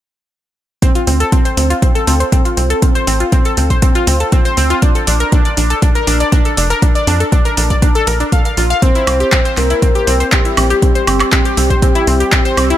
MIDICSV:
0, 0, Header, 1, 5, 480
1, 0, Start_track
1, 0, Key_signature, -1, "minor"
1, 0, Tempo, 500000
1, 791, Time_signature, 4, 2, 24, 8
1, 12266, End_track
2, 0, Start_track
2, 0, Title_t, "Soft synth lead"
2, 0, Program_c, 0, 80
2, 8470, Note_on_c, 0, 72, 102
2, 9098, Note_off_c, 0, 72, 0
2, 9190, Note_on_c, 0, 70, 94
2, 9818, Note_off_c, 0, 70, 0
2, 9909, Note_on_c, 0, 67, 94
2, 10344, Note_off_c, 0, 67, 0
2, 10390, Note_on_c, 0, 67, 93
2, 10825, Note_off_c, 0, 67, 0
2, 10870, Note_on_c, 0, 67, 103
2, 12218, Note_off_c, 0, 67, 0
2, 12266, End_track
3, 0, Start_track
3, 0, Title_t, "Synth pluck"
3, 0, Program_c, 1, 84
3, 790, Note_on_c, 1, 60, 96
3, 842, Note_off_c, 1, 60, 0
3, 915, Note_on_c, 1, 65, 77
3, 962, Note_off_c, 1, 65, 0
3, 1030, Note_on_c, 1, 60, 77
3, 1107, Note_off_c, 1, 60, 0
3, 1155, Note_on_c, 1, 69, 79
3, 1183, Note_off_c, 1, 69, 0
3, 1271, Note_on_c, 1, 60, 95
3, 1322, Note_off_c, 1, 60, 0
3, 1395, Note_on_c, 1, 72, 72
3, 1442, Note_off_c, 1, 72, 0
3, 1510, Note_on_c, 1, 60, 74
3, 1561, Note_off_c, 1, 60, 0
3, 1634, Note_on_c, 1, 65, 78
3, 1706, Note_off_c, 1, 65, 0
3, 1749, Note_on_c, 1, 60, 83
3, 1781, Note_off_c, 1, 60, 0
3, 1874, Note_on_c, 1, 69, 104
3, 1945, Note_off_c, 1, 69, 0
3, 1990, Note_on_c, 1, 60, 97
3, 2041, Note_off_c, 1, 60, 0
3, 2114, Note_on_c, 1, 72, 74
3, 2143, Note_off_c, 1, 72, 0
3, 2230, Note_on_c, 1, 60, 103
3, 2281, Note_off_c, 1, 60, 0
3, 2354, Note_on_c, 1, 65, 75
3, 2425, Note_off_c, 1, 65, 0
3, 2469, Note_on_c, 1, 60, 74
3, 2521, Note_off_c, 1, 60, 0
3, 2594, Note_on_c, 1, 69, 94
3, 2642, Note_off_c, 1, 69, 0
3, 2710, Note_on_c, 1, 60, 77
3, 2741, Note_off_c, 1, 60, 0
3, 2835, Note_on_c, 1, 72, 103
3, 2906, Note_off_c, 1, 72, 0
3, 2950, Note_on_c, 1, 60, 102
3, 3001, Note_off_c, 1, 60, 0
3, 3075, Note_on_c, 1, 65, 75
3, 3103, Note_off_c, 1, 65, 0
3, 3191, Note_on_c, 1, 60, 99
3, 3242, Note_off_c, 1, 60, 0
3, 3315, Note_on_c, 1, 69, 98
3, 3363, Note_off_c, 1, 69, 0
3, 3431, Note_on_c, 1, 60, 72
3, 3482, Note_off_c, 1, 60, 0
3, 3555, Note_on_c, 1, 72, 102
3, 3602, Note_off_c, 1, 72, 0
3, 3670, Note_on_c, 1, 60, 83
3, 3701, Note_off_c, 1, 60, 0
3, 3795, Note_on_c, 1, 65, 98
3, 3866, Note_off_c, 1, 65, 0
3, 3910, Note_on_c, 1, 60, 78
3, 3987, Note_off_c, 1, 60, 0
3, 4035, Note_on_c, 1, 69, 74
3, 4063, Note_off_c, 1, 69, 0
3, 4150, Note_on_c, 1, 60, 98
3, 4201, Note_off_c, 1, 60, 0
3, 4274, Note_on_c, 1, 72, 102
3, 4322, Note_off_c, 1, 72, 0
3, 4390, Note_on_c, 1, 60, 106
3, 4466, Note_off_c, 1, 60, 0
3, 4514, Note_on_c, 1, 65, 96
3, 4562, Note_off_c, 1, 65, 0
3, 4630, Note_on_c, 1, 62, 92
3, 4681, Note_off_c, 1, 62, 0
3, 4755, Note_on_c, 1, 69, 75
3, 4802, Note_off_c, 1, 69, 0
3, 4870, Note_on_c, 1, 62, 79
3, 4947, Note_off_c, 1, 62, 0
3, 4995, Note_on_c, 1, 70, 75
3, 5023, Note_off_c, 1, 70, 0
3, 5109, Note_on_c, 1, 62, 96
3, 5161, Note_off_c, 1, 62, 0
3, 5234, Note_on_c, 1, 74, 69
3, 5282, Note_off_c, 1, 74, 0
3, 5350, Note_on_c, 1, 62, 76
3, 5401, Note_off_c, 1, 62, 0
3, 5474, Note_on_c, 1, 69, 74
3, 5546, Note_off_c, 1, 69, 0
3, 5590, Note_on_c, 1, 62, 82
3, 5621, Note_off_c, 1, 62, 0
3, 5715, Note_on_c, 1, 70, 100
3, 5786, Note_off_c, 1, 70, 0
3, 5830, Note_on_c, 1, 62, 99
3, 5881, Note_off_c, 1, 62, 0
3, 5955, Note_on_c, 1, 74, 72
3, 5984, Note_off_c, 1, 74, 0
3, 6070, Note_on_c, 1, 62, 98
3, 6121, Note_off_c, 1, 62, 0
3, 6195, Note_on_c, 1, 69, 76
3, 6266, Note_off_c, 1, 69, 0
3, 6311, Note_on_c, 1, 62, 77
3, 6362, Note_off_c, 1, 62, 0
3, 6434, Note_on_c, 1, 70, 100
3, 6482, Note_off_c, 1, 70, 0
3, 6549, Note_on_c, 1, 62, 79
3, 6581, Note_off_c, 1, 62, 0
3, 6675, Note_on_c, 1, 74, 104
3, 6746, Note_off_c, 1, 74, 0
3, 6789, Note_on_c, 1, 62, 106
3, 6841, Note_off_c, 1, 62, 0
3, 6914, Note_on_c, 1, 69, 72
3, 6943, Note_off_c, 1, 69, 0
3, 7030, Note_on_c, 1, 62, 98
3, 7081, Note_off_c, 1, 62, 0
3, 7154, Note_on_c, 1, 70, 94
3, 7202, Note_off_c, 1, 70, 0
3, 7270, Note_on_c, 1, 62, 76
3, 7322, Note_off_c, 1, 62, 0
3, 7395, Note_on_c, 1, 74, 102
3, 7442, Note_off_c, 1, 74, 0
3, 7510, Note_on_c, 1, 62, 81
3, 7541, Note_off_c, 1, 62, 0
3, 7635, Note_on_c, 1, 69, 101
3, 7706, Note_off_c, 1, 69, 0
3, 7751, Note_on_c, 1, 70, 78
3, 7827, Note_off_c, 1, 70, 0
3, 7875, Note_on_c, 1, 62, 76
3, 7922, Note_off_c, 1, 62, 0
3, 7990, Note_on_c, 1, 77, 83
3, 8041, Note_off_c, 1, 77, 0
3, 8114, Note_on_c, 1, 77, 75
3, 8162, Note_off_c, 1, 77, 0
3, 8231, Note_on_c, 1, 65, 76
3, 8282, Note_off_c, 1, 65, 0
3, 8355, Note_on_c, 1, 77, 96
3, 8402, Note_off_c, 1, 77, 0
3, 8471, Note_on_c, 1, 60, 98
3, 8522, Note_off_c, 1, 60, 0
3, 8596, Note_on_c, 1, 64, 83
3, 8643, Note_off_c, 1, 64, 0
3, 8710, Note_on_c, 1, 60, 79
3, 8787, Note_off_c, 1, 60, 0
3, 8835, Note_on_c, 1, 67, 78
3, 8863, Note_off_c, 1, 67, 0
3, 8950, Note_on_c, 1, 60, 99
3, 9001, Note_off_c, 1, 60, 0
3, 9075, Note_on_c, 1, 72, 77
3, 9122, Note_off_c, 1, 72, 0
3, 9191, Note_on_c, 1, 60, 77
3, 9242, Note_off_c, 1, 60, 0
3, 9315, Note_on_c, 1, 64, 76
3, 9386, Note_off_c, 1, 64, 0
3, 9430, Note_on_c, 1, 60, 80
3, 9461, Note_off_c, 1, 60, 0
3, 9554, Note_on_c, 1, 67, 98
3, 9625, Note_off_c, 1, 67, 0
3, 9669, Note_on_c, 1, 60, 105
3, 9721, Note_off_c, 1, 60, 0
3, 9794, Note_on_c, 1, 72, 76
3, 9823, Note_off_c, 1, 72, 0
3, 9910, Note_on_c, 1, 60, 99
3, 9961, Note_off_c, 1, 60, 0
3, 10035, Note_on_c, 1, 64, 74
3, 10106, Note_off_c, 1, 64, 0
3, 10151, Note_on_c, 1, 60, 73
3, 10202, Note_off_c, 1, 60, 0
3, 10276, Note_on_c, 1, 67, 93
3, 10323, Note_off_c, 1, 67, 0
3, 10391, Note_on_c, 1, 60, 82
3, 10421, Note_off_c, 1, 60, 0
3, 10515, Note_on_c, 1, 72, 100
3, 10586, Note_off_c, 1, 72, 0
3, 10631, Note_on_c, 1, 60, 104
3, 10682, Note_off_c, 1, 60, 0
3, 10755, Note_on_c, 1, 60, 76
3, 10784, Note_off_c, 1, 60, 0
3, 10871, Note_on_c, 1, 60, 99
3, 10922, Note_off_c, 1, 60, 0
3, 10996, Note_on_c, 1, 67, 97
3, 11043, Note_off_c, 1, 67, 0
3, 11111, Note_on_c, 1, 60, 75
3, 11162, Note_off_c, 1, 60, 0
3, 11235, Note_on_c, 1, 72, 100
3, 11282, Note_off_c, 1, 72, 0
3, 11351, Note_on_c, 1, 60, 83
3, 11382, Note_off_c, 1, 60, 0
3, 11475, Note_on_c, 1, 64, 99
3, 11546, Note_off_c, 1, 64, 0
3, 11591, Note_on_c, 1, 60, 79
3, 11667, Note_off_c, 1, 60, 0
3, 11715, Note_on_c, 1, 67, 74
3, 11744, Note_off_c, 1, 67, 0
3, 11830, Note_on_c, 1, 60, 102
3, 11881, Note_off_c, 1, 60, 0
3, 11954, Note_on_c, 1, 72, 102
3, 12002, Note_off_c, 1, 72, 0
3, 12070, Note_on_c, 1, 60, 102
3, 12147, Note_off_c, 1, 60, 0
3, 12196, Note_on_c, 1, 64, 98
3, 12243, Note_off_c, 1, 64, 0
3, 12266, End_track
4, 0, Start_track
4, 0, Title_t, "Analog synth bass"
4, 0, Program_c, 2, 38
4, 1030, Note_on_c, 2, 38, 95
4, 1190, Note_off_c, 2, 38, 0
4, 1509, Note_on_c, 2, 38, 105
4, 1669, Note_off_c, 2, 38, 0
4, 1990, Note_on_c, 2, 38, 94
4, 2150, Note_off_c, 2, 38, 0
4, 2470, Note_on_c, 2, 36, 97
4, 2630, Note_off_c, 2, 36, 0
4, 2950, Note_on_c, 2, 33, 95
4, 3110, Note_off_c, 2, 33, 0
4, 3431, Note_on_c, 2, 38, 81
4, 3590, Note_off_c, 2, 38, 0
4, 3910, Note_on_c, 2, 38, 95
4, 4070, Note_off_c, 2, 38, 0
4, 4390, Note_on_c, 2, 38, 83
4, 4550, Note_off_c, 2, 38, 0
4, 4872, Note_on_c, 2, 34, 99
4, 5031, Note_off_c, 2, 34, 0
4, 5351, Note_on_c, 2, 34, 108
4, 5510, Note_off_c, 2, 34, 0
4, 5830, Note_on_c, 2, 34, 104
4, 5990, Note_off_c, 2, 34, 0
4, 6310, Note_on_c, 2, 29, 96
4, 6470, Note_off_c, 2, 29, 0
4, 6789, Note_on_c, 2, 41, 104
4, 6949, Note_off_c, 2, 41, 0
4, 7270, Note_on_c, 2, 34, 82
4, 7430, Note_off_c, 2, 34, 0
4, 7750, Note_on_c, 2, 34, 90
4, 7910, Note_off_c, 2, 34, 0
4, 8229, Note_on_c, 2, 34, 78
4, 8389, Note_off_c, 2, 34, 0
4, 8710, Note_on_c, 2, 36, 96
4, 8870, Note_off_c, 2, 36, 0
4, 9190, Note_on_c, 2, 36, 109
4, 9350, Note_off_c, 2, 36, 0
4, 9670, Note_on_c, 2, 36, 102
4, 9830, Note_off_c, 2, 36, 0
4, 10151, Note_on_c, 2, 34, 90
4, 10310, Note_off_c, 2, 34, 0
4, 10630, Note_on_c, 2, 31, 98
4, 10790, Note_off_c, 2, 31, 0
4, 11110, Note_on_c, 2, 36, 87
4, 11270, Note_off_c, 2, 36, 0
4, 11589, Note_on_c, 2, 36, 97
4, 11749, Note_off_c, 2, 36, 0
4, 12070, Note_on_c, 2, 36, 84
4, 12230, Note_off_c, 2, 36, 0
4, 12266, End_track
5, 0, Start_track
5, 0, Title_t, "Drums"
5, 790, Note_on_c, 9, 36, 111
5, 791, Note_on_c, 9, 42, 64
5, 886, Note_off_c, 9, 36, 0
5, 887, Note_off_c, 9, 42, 0
5, 915, Note_on_c, 9, 42, 38
5, 1011, Note_off_c, 9, 42, 0
5, 1030, Note_on_c, 9, 46, 101
5, 1126, Note_off_c, 9, 46, 0
5, 1155, Note_on_c, 9, 42, 38
5, 1251, Note_off_c, 9, 42, 0
5, 1270, Note_on_c, 9, 36, 115
5, 1270, Note_on_c, 9, 42, 67
5, 1366, Note_off_c, 9, 36, 0
5, 1366, Note_off_c, 9, 42, 0
5, 1395, Note_on_c, 9, 42, 39
5, 1491, Note_off_c, 9, 42, 0
5, 1511, Note_on_c, 9, 46, 106
5, 1607, Note_off_c, 9, 46, 0
5, 1636, Note_on_c, 9, 42, 42
5, 1732, Note_off_c, 9, 42, 0
5, 1750, Note_on_c, 9, 36, 115
5, 1751, Note_on_c, 9, 42, 68
5, 1846, Note_off_c, 9, 36, 0
5, 1847, Note_off_c, 9, 42, 0
5, 1876, Note_on_c, 9, 42, 37
5, 1972, Note_off_c, 9, 42, 0
5, 1991, Note_on_c, 9, 46, 97
5, 2087, Note_off_c, 9, 46, 0
5, 2116, Note_on_c, 9, 42, 40
5, 2212, Note_off_c, 9, 42, 0
5, 2230, Note_on_c, 9, 36, 109
5, 2231, Note_on_c, 9, 42, 67
5, 2326, Note_off_c, 9, 36, 0
5, 2327, Note_off_c, 9, 42, 0
5, 2356, Note_on_c, 9, 42, 39
5, 2452, Note_off_c, 9, 42, 0
5, 2470, Note_on_c, 9, 46, 104
5, 2566, Note_off_c, 9, 46, 0
5, 2594, Note_on_c, 9, 42, 42
5, 2690, Note_off_c, 9, 42, 0
5, 2710, Note_on_c, 9, 42, 67
5, 2711, Note_on_c, 9, 36, 120
5, 2806, Note_off_c, 9, 42, 0
5, 2807, Note_off_c, 9, 36, 0
5, 2835, Note_on_c, 9, 42, 40
5, 2931, Note_off_c, 9, 42, 0
5, 2950, Note_on_c, 9, 46, 108
5, 3046, Note_off_c, 9, 46, 0
5, 3075, Note_on_c, 9, 42, 38
5, 3171, Note_off_c, 9, 42, 0
5, 3190, Note_on_c, 9, 42, 64
5, 3191, Note_on_c, 9, 36, 122
5, 3286, Note_off_c, 9, 42, 0
5, 3287, Note_off_c, 9, 36, 0
5, 3315, Note_on_c, 9, 42, 38
5, 3411, Note_off_c, 9, 42, 0
5, 3429, Note_on_c, 9, 46, 108
5, 3525, Note_off_c, 9, 46, 0
5, 3555, Note_on_c, 9, 36, 63
5, 3555, Note_on_c, 9, 42, 39
5, 3651, Note_off_c, 9, 36, 0
5, 3651, Note_off_c, 9, 42, 0
5, 3669, Note_on_c, 9, 42, 66
5, 3671, Note_on_c, 9, 36, 115
5, 3765, Note_off_c, 9, 42, 0
5, 3767, Note_off_c, 9, 36, 0
5, 3795, Note_on_c, 9, 42, 36
5, 3891, Note_off_c, 9, 42, 0
5, 3910, Note_on_c, 9, 46, 105
5, 4006, Note_off_c, 9, 46, 0
5, 4034, Note_on_c, 9, 42, 38
5, 4130, Note_off_c, 9, 42, 0
5, 4149, Note_on_c, 9, 42, 67
5, 4151, Note_on_c, 9, 36, 117
5, 4245, Note_off_c, 9, 42, 0
5, 4247, Note_off_c, 9, 36, 0
5, 4274, Note_on_c, 9, 42, 38
5, 4370, Note_off_c, 9, 42, 0
5, 4389, Note_on_c, 9, 46, 106
5, 4485, Note_off_c, 9, 46, 0
5, 4514, Note_on_c, 9, 42, 38
5, 4610, Note_off_c, 9, 42, 0
5, 4630, Note_on_c, 9, 42, 64
5, 4631, Note_on_c, 9, 36, 121
5, 4726, Note_off_c, 9, 42, 0
5, 4727, Note_off_c, 9, 36, 0
5, 4754, Note_on_c, 9, 42, 36
5, 4850, Note_off_c, 9, 42, 0
5, 4870, Note_on_c, 9, 46, 109
5, 4966, Note_off_c, 9, 46, 0
5, 4995, Note_on_c, 9, 42, 38
5, 5091, Note_off_c, 9, 42, 0
5, 5110, Note_on_c, 9, 42, 65
5, 5111, Note_on_c, 9, 36, 123
5, 5206, Note_off_c, 9, 42, 0
5, 5207, Note_off_c, 9, 36, 0
5, 5234, Note_on_c, 9, 42, 37
5, 5330, Note_off_c, 9, 42, 0
5, 5350, Note_on_c, 9, 46, 111
5, 5446, Note_off_c, 9, 46, 0
5, 5475, Note_on_c, 9, 42, 37
5, 5571, Note_off_c, 9, 42, 0
5, 5590, Note_on_c, 9, 42, 63
5, 5591, Note_on_c, 9, 36, 123
5, 5686, Note_off_c, 9, 42, 0
5, 5687, Note_off_c, 9, 36, 0
5, 5715, Note_on_c, 9, 42, 34
5, 5811, Note_off_c, 9, 42, 0
5, 5830, Note_on_c, 9, 46, 102
5, 5926, Note_off_c, 9, 46, 0
5, 5955, Note_on_c, 9, 42, 38
5, 6051, Note_off_c, 9, 42, 0
5, 6070, Note_on_c, 9, 36, 118
5, 6070, Note_on_c, 9, 42, 64
5, 6166, Note_off_c, 9, 36, 0
5, 6166, Note_off_c, 9, 42, 0
5, 6195, Note_on_c, 9, 42, 36
5, 6291, Note_off_c, 9, 42, 0
5, 6311, Note_on_c, 9, 46, 103
5, 6407, Note_off_c, 9, 46, 0
5, 6435, Note_on_c, 9, 42, 38
5, 6531, Note_off_c, 9, 42, 0
5, 6550, Note_on_c, 9, 36, 122
5, 6550, Note_on_c, 9, 42, 63
5, 6646, Note_off_c, 9, 36, 0
5, 6646, Note_off_c, 9, 42, 0
5, 6676, Note_on_c, 9, 42, 36
5, 6772, Note_off_c, 9, 42, 0
5, 6790, Note_on_c, 9, 46, 105
5, 6886, Note_off_c, 9, 46, 0
5, 6915, Note_on_c, 9, 42, 36
5, 7011, Note_off_c, 9, 42, 0
5, 7030, Note_on_c, 9, 36, 123
5, 7030, Note_on_c, 9, 42, 64
5, 7126, Note_off_c, 9, 36, 0
5, 7126, Note_off_c, 9, 42, 0
5, 7154, Note_on_c, 9, 42, 37
5, 7250, Note_off_c, 9, 42, 0
5, 7270, Note_on_c, 9, 46, 107
5, 7366, Note_off_c, 9, 46, 0
5, 7395, Note_on_c, 9, 36, 66
5, 7395, Note_on_c, 9, 42, 38
5, 7491, Note_off_c, 9, 36, 0
5, 7491, Note_off_c, 9, 42, 0
5, 7510, Note_on_c, 9, 36, 118
5, 7510, Note_on_c, 9, 42, 61
5, 7606, Note_off_c, 9, 36, 0
5, 7606, Note_off_c, 9, 42, 0
5, 7634, Note_on_c, 9, 42, 36
5, 7730, Note_off_c, 9, 42, 0
5, 7749, Note_on_c, 9, 46, 102
5, 7845, Note_off_c, 9, 46, 0
5, 7874, Note_on_c, 9, 42, 37
5, 7970, Note_off_c, 9, 42, 0
5, 7990, Note_on_c, 9, 36, 115
5, 7990, Note_on_c, 9, 42, 63
5, 8086, Note_off_c, 9, 36, 0
5, 8086, Note_off_c, 9, 42, 0
5, 8115, Note_on_c, 9, 42, 38
5, 8211, Note_off_c, 9, 42, 0
5, 8231, Note_on_c, 9, 46, 105
5, 8327, Note_off_c, 9, 46, 0
5, 8355, Note_on_c, 9, 42, 36
5, 8451, Note_off_c, 9, 42, 0
5, 8470, Note_on_c, 9, 36, 117
5, 8470, Note_on_c, 9, 42, 64
5, 8566, Note_off_c, 9, 36, 0
5, 8566, Note_off_c, 9, 42, 0
5, 8595, Note_on_c, 9, 42, 35
5, 8691, Note_off_c, 9, 42, 0
5, 8710, Note_on_c, 9, 46, 98
5, 8710, Note_on_c, 9, 76, 65
5, 8806, Note_off_c, 9, 46, 0
5, 8806, Note_off_c, 9, 76, 0
5, 8835, Note_on_c, 9, 42, 36
5, 8931, Note_off_c, 9, 42, 0
5, 8947, Note_on_c, 9, 39, 108
5, 8950, Note_on_c, 9, 36, 124
5, 8950, Note_on_c, 9, 42, 59
5, 9043, Note_off_c, 9, 39, 0
5, 9046, Note_off_c, 9, 36, 0
5, 9046, Note_off_c, 9, 42, 0
5, 9075, Note_on_c, 9, 42, 39
5, 9171, Note_off_c, 9, 42, 0
5, 9187, Note_on_c, 9, 39, 36
5, 9190, Note_on_c, 9, 46, 107
5, 9283, Note_off_c, 9, 39, 0
5, 9286, Note_off_c, 9, 46, 0
5, 9315, Note_on_c, 9, 42, 37
5, 9411, Note_off_c, 9, 42, 0
5, 9430, Note_on_c, 9, 36, 116
5, 9430, Note_on_c, 9, 42, 63
5, 9526, Note_off_c, 9, 36, 0
5, 9526, Note_off_c, 9, 42, 0
5, 9555, Note_on_c, 9, 42, 36
5, 9651, Note_off_c, 9, 42, 0
5, 9670, Note_on_c, 9, 46, 104
5, 9766, Note_off_c, 9, 46, 0
5, 9795, Note_on_c, 9, 42, 37
5, 9891, Note_off_c, 9, 42, 0
5, 9907, Note_on_c, 9, 39, 108
5, 9910, Note_on_c, 9, 36, 116
5, 9910, Note_on_c, 9, 42, 61
5, 10003, Note_off_c, 9, 39, 0
5, 10006, Note_off_c, 9, 36, 0
5, 10006, Note_off_c, 9, 42, 0
5, 10035, Note_on_c, 9, 42, 37
5, 10131, Note_off_c, 9, 42, 0
5, 10150, Note_on_c, 9, 46, 101
5, 10150, Note_on_c, 9, 76, 67
5, 10246, Note_off_c, 9, 46, 0
5, 10246, Note_off_c, 9, 76, 0
5, 10275, Note_on_c, 9, 42, 37
5, 10371, Note_off_c, 9, 42, 0
5, 10390, Note_on_c, 9, 36, 110
5, 10391, Note_on_c, 9, 42, 68
5, 10486, Note_off_c, 9, 36, 0
5, 10487, Note_off_c, 9, 42, 0
5, 10516, Note_on_c, 9, 42, 39
5, 10612, Note_off_c, 9, 42, 0
5, 10631, Note_on_c, 9, 46, 103
5, 10631, Note_on_c, 9, 76, 67
5, 10727, Note_off_c, 9, 46, 0
5, 10727, Note_off_c, 9, 76, 0
5, 10752, Note_on_c, 9, 39, 35
5, 10755, Note_on_c, 9, 42, 38
5, 10755, Note_on_c, 9, 76, 63
5, 10848, Note_off_c, 9, 39, 0
5, 10851, Note_off_c, 9, 42, 0
5, 10851, Note_off_c, 9, 76, 0
5, 10868, Note_on_c, 9, 39, 117
5, 10870, Note_on_c, 9, 36, 115
5, 10871, Note_on_c, 9, 42, 64
5, 10964, Note_off_c, 9, 39, 0
5, 10966, Note_off_c, 9, 36, 0
5, 10967, Note_off_c, 9, 42, 0
5, 10996, Note_on_c, 9, 42, 38
5, 11092, Note_off_c, 9, 42, 0
5, 11111, Note_on_c, 9, 46, 102
5, 11207, Note_off_c, 9, 46, 0
5, 11235, Note_on_c, 9, 36, 59
5, 11236, Note_on_c, 9, 42, 39
5, 11331, Note_off_c, 9, 36, 0
5, 11332, Note_off_c, 9, 42, 0
5, 11350, Note_on_c, 9, 36, 109
5, 11351, Note_on_c, 9, 42, 63
5, 11446, Note_off_c, 9, 36, 0
5, 11447, Note_off_c, 9, 42, 0
5, 11475, Note_on_c, 9, 42, 39
5, 11571, Note_off_c, 9, 42, 0
5, 11591, Note_on_c, 9, 46, 97
5, 11687, Note_off_c, 9, 46, 0
5, 11716, Note_on_c, 9, 42, 38
5, 11812, Note_off_c, 9, 42, 0
5, 11828, Note_on_c, 9, 39, 114
5, 11830, Note_on_c, 9, 36, 116
5, 11831, Note_on_c, 9, 42, 66
5, 11924, Note_off_c, 9, 39, 0
5, 11926, Note_off_c, 9, 36, 0
5, 11927, Note_off_c, 9, 42, 0
5, 11955, Note_on_c, 9, 42, 37
5, 12051, Note_off_c, 9, 42, 0
5, 12071, Note_on_c, 9, 46, 99
5, 12071, Note_on_c, 9, 76, 66
5, 12167, Note_off_c, 9, 46, 0
5, 12167, Note_off_c, 9, 76, 0
5, 12196, Note_on_c, 9, 42, 41
5, 12266, Note_off_c, 9, 42, 0
5, 12266, End_track
0, 0, End_of_file